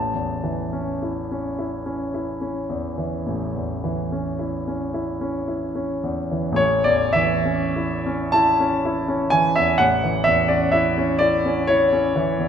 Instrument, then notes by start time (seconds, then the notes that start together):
grand piano
Already playing: A1 A5
0.14 E2
0.44 E3
0.73 C#4
1.03 E4
1.32 C#4
1.59 E4
1.86 C#4
2.14 E4
2.41 C#4
2.69 E2
2.98 E3
3.26 A1
3.56 E2
3.84 E3
4.12 C#4
4.39 E4
4.68 C#4
4.94 E4
5.21 C#4
5.48 E4
5.75 C#4
6.03 E2
6.31 E3
6.52 A1
6.56 C#5
6.84 E2 D5
7.13 E3 E5
7.45 C#4
7.76 E4
8.06 C#4
8.32 E4 A5
8.60 C#4
8.85 E4
9.08 C#4
9.30 E3 G#5
9.56 E2 E5
9.78 A1 F#5
10.04 E3
10.24 E2 E5
10.48 C#4 D5
10.72 E4 E5
10.98 C#4
11.19 E4 D5
11.46 C#4
11.67 E4 C#5
11.93 C#4
12.16 E3
12.39 E2